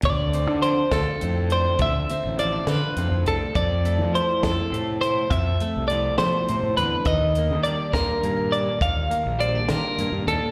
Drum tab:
HH |xxxxxx|xxxxxx|xxxxxx|xxxxxx|
SD |---o--|---o--|---o--|---o--|
BD |o--o--|o-----|o--o--|o-----|

HH |xxxxxx|xxxxxx|
SD |---o--|---o--|
BD |o--o--|o-----|